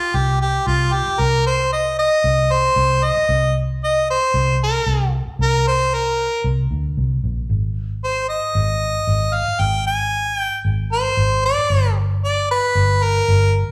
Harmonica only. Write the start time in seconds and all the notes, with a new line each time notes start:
Already playing: F4
0.15 G4
0.41 G4
0.67 F4
0.93 G4
1.20 A#4
1.47 C5
1.72 D#5
1.99 D#5
2.52 C5
3.04 D#5
3.84 D#5
4.10 C5
4.63 A#4
5.42 A#4
5.67 C5
5.94 A#4
8.04 C5
8.29 D#5
9.34 F5
9.61 G5
9.87 G#5
10.38 G5
10.92 C5
11.45 D5
12.24 D5
12.51 B4
13.03 A#4